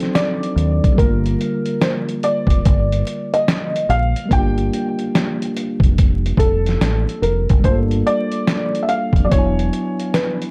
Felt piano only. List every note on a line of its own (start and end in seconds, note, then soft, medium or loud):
0.00 0.15 C5 medium
0.15 1.00 D5 medium
0.98 1.84 A#4 loud
1.81 1.91 C5 medium
2.24 3.36 D5 medium
3.34 3.91 D#5 medium
3.90 4.28 F5 loud
4.33 5.94 G5 loud
6.39 7.25 A4 loud
7.22 7.61 A#4 medium
7.65 7.74 C5 loud
8.07 8.80 D5 loud
8.83 8.88 E5 medium
8.89 9.23 F5 medium
9.25 9.30 D5 medium
9.31 10.17 C#5 loud
10.14 10.51 B4 medium